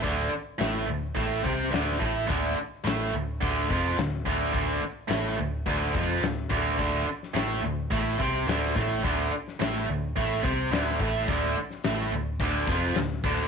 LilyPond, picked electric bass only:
\new Staff \with { instrumentName = "Picked electric bass" } { \clef bass \time 4/4 \key c \lydian \tempo 4 = 107 d,,8 r8 a,,8 d,,8 a,,8 c,8 d,,8 a,,8 | d,,8 r8 a,,8 d,,8 d,,8 f,,8 d,,8 d,,8 | d,,8 r8 a,,8 d,,8 d,,8 f,,8 d,,8 d,,8 | d,,8 r8 a,,8 d,,8 a,,8 c,8 d,,8 a,,8 |
d,,8 r8 a,,8 d,,8 a,,8 c,8 d,,8 a,,8 | d,,8 r8 a,,8 d,,8 d,,8 f,,8 d,,8 d,,8 | }